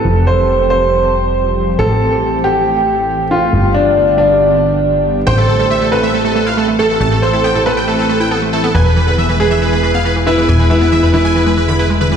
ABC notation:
X:1
M:4/4
L:1/16
Q:1/4=138
K:Am
V:1 name="Supersaw synth"
z16 | z16 | z16 | g A A A e A A e A A A f A z A A |
a A A A g A A g A A A g A z A A | ^g B B B e B B e B B B f B z B B | ^g B B B e B B g B B B b B z B B |]
V:2 name="Grand piano"
A2 c4 c8- c2 | A6 G8 F2- | F2 D4 D8- D2 | c6 B8 A2- |
A2 c4 B8- B2 | B6 ^G8 E2- | E2 E4 E8- E2 |]
V:3 name="Synth arpeggio sound"
z16 | z16 | z16 | A, A, A, G, A, A, C A, A, A, A, E A, A, A, A, |
A, A, A, E B, A,, A, A, A, C A, E B, A, A, B, | E, E, E, D, E, E, ^G, E, E, E, E, B, E, E, E, E, | E, E, E, B, E, E,, E, E, E, ^G, E, D, E G, D, E, |]
V:4 name="Analog synth bass" clef=bass
F,,,16 | A,,,16 | G,,,16 | A,,,16 |
A,,,16 | E,,,16 | E,,,16 |]